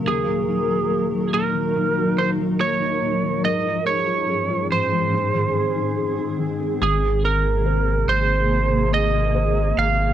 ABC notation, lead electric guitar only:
X:1
M:4/4
L:1/8
Q:1/4=71
K:Abmix
V:1 name="Lead electric guitar"
A3 B2 c d2 | e d2 c4 z | A B2 c2 e2 f |]